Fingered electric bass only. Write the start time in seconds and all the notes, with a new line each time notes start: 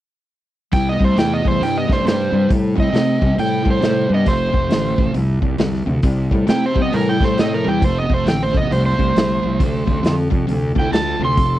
0.73 C2
1.00 C2
1.17 E2
1.45 E2
1.62 G2
1.89 G2
2.05 G2
2.33 G2
2.51 A2
2.78 A2
2.93 C3
3.22 C3
3.38 A2
3.66 A2
3.83 A2
4.10 G2
4.27 F1
4.54 F1
4.69 A1
4.99 A1
5.15 C2
5.42 C2
5.60 C2
5.87 D2
6.04 C2
6.31 A2
6.49 C3
6.76 C3
6.94 A2
7.20 A2
7.40 A2
7.67 E2
7.82 F1
8.10 F1
8.26 A1
8.55 A1
8.71 C2
8.99 C2
9.17 C2
9.44 C2
9.60 D2
9.88 D2
10.04 F2
10.32 F2
10.49 D2
10.76 D2
10.93 D2
11.20 D2
11.37 F1